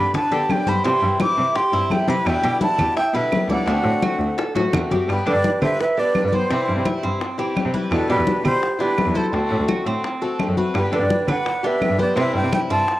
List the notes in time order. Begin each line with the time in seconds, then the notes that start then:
Already playing: D3 G3 B3 D4 G4 B5
0.14 D4 B4 A5, muted steel-string acoustic guitar stroke, high bongo, high conga, low conga
0.31 D3 G3 B3 G4, high bongo, high conga
0.49 D3 G3 B3 D4 G4 G5, high bongo, low bongo, high conga, claves
0.67 G2 G3 B3 G4 C5 B5, high bongo, high conga
0.84 C3 E3 G3 C4 E4 G4 C6, high bongo, high conga
1.02 G2, high conga
1.20 E4 G4 D6, high bongo, high conga, claves
1.37 C3, high bongo, high conga
1.55 G4 C6, muted steel-string acoustic guitar stroke, high bongo, high conga
1.73 G2 E3 G3 C4 E4, high bongo, high conga
1.90 E3 G3 C4 E4 G5, high bongo, low bongo, high conga, claves
2.08 C3 E3 G3 C4 E4 G4 B4 B5, high bongo, high conga
2.25 E2 B2 D3 G3 B3 E4 G5, high bongo, high conga, claves
2.44 B2 G4, high conga
2.61 E4 A5, high bongo, high conga
2.79 E2 G4, high bongo, high conga, low conga, claves
2.97 E4 E5 G5, muted steel-string acoustic guitar stroke, high bongo, high conga
3.14 B2 D3 G3 B3 E4 B4 E5, high bongo, high conga
3.32 D3 G3 B3 E4, high bongo, low bongo, high conga, claves
3.48 C#2 D3 G3 B3 D4 E4 D5 F#5, high bongo, high conga
3.66 D2 D3 A3 C4 D4 F#4, high bongo, high conga
3.84 A2, high conga
4.02 F#4, high bongo, high conga, claves
4.19 D2, high bongo, high conga
4.38 A4, muted steel-string acoustic guitar stroke, high bongo, high conga
4.55 A2 A3 C4 F#4, high bongo, high conga
4.73 E2 D3 A3 C4 F#4, low bongo, low conga, claves
4.90 F#2 A3 C4 F#4 G4, low bongo, low conga
5.08 G2 D3 G3 B3 G4 B4, high bongo, high conga, claves
5.12 G4
5.26 D3 D4 B4 D5, high conga
5.34 G2
5.44 high bongo, high conga
5.62 D3 B4 C5 E5, high bongo, high conga, low conga, claves
5.79 B4 E5, muted steel-string acoustic guitar stroke, high bongo, high conga
5.97 G3 B3 D4 G4 B4 D5, high bongo, high conga
6.14 D3 G3 B3 G4, high bongo, low bongo, high conga, claves
6.24 G2 B4 D5
6.32 G3 B3 G4 C5, high bongo, high conga
6.49 C3 E3 G3 C4 E4, high bongo
6.68 G2, high conga
6.76 C3
6.85 E4, high bongo, high conga, claves
7.03 G2 C4, high bongo, high conga
7.21 muted steel-string acoustic guitar stroke, high bongo, high conga
7.38 E3 G3 C4 E4 G4, high bongo, high conga
7.55 E3 G3 C4 E4, high bongo, low bongo, high conga, claves
7.65 C3
7.73 E3 G3 C4 E4 B4, high bongo, high conga
7.91 E2 B2 D3 G3 B3 E4 A4, high bongo, claves
8.09 B2 D4 G4 B4, high conga
8.18 E2
8.27 high bongo, high conga
8.44 B2 G4 C5 B5, high bongo, high conga, low conga, claves
8.62 muted steel-string acoustic guitar stroke, high bongo, high conga
8.79 D3 G3 B3 D4 E4 G4 B4, high bongo, high conga
8.97 D3 G3 B3 E4, high bongo, low bongo, high conga, claves
9.06 E2
9.14 D3 G3 B3 E4 F#4 A4 C5, high bongo, high conga
9.32 D2 D3 A3 C4 F#4, high bongo
9.50 A2, high conga
9.59 D2
9.68 F#4, high bongo, high conga, claves
9.86 A2 C4, high bongo, high conga
10.04 muted steel-string acoustic guitar stroke, high bongo, high conga
10.21 A3 C4 F#4 A4, high bongo, high conga
10.39 D3 A3 C4 F#4, high bongo, low bongo, high conga, claves
10.48 F#2
10.57 A3 C4 F#4 B4, high bongo, high conga
10.74 G2 D3 G3 B3 G4 B4, high bongo, claves
10.92 D3 D4 B4 D5, high conga
11.01 G2
11.10 high bongo, high conga
11.28 D3 B4 D5 F#5, high bongo, high conga, low conga, claves
11.46 muted steel-string acoustic guitar stroke, high bongo, high conga
11.63 G3 B3 D4 G4 B4 E5, high bongo, high conga
11.81 D3 G3 B3 G4, high bongo, low bongo, high conga, claves
11.90 G2
11.98 G3 B3 G4 B4 C5 D5, high bongo, high conga
12.16 C3 E3 G3 C4 E4 C5 E5, high bongo, high conga
12.34 G2 E5 G5, high conga
12.43 C3
12.52 E4 E5 G5, high bongo, high conga, claves
12.70 G2 C4 E5 A5, high bongo, high conga
12.87 muted steel-string acoustic guitar stroke, high bongo, high conga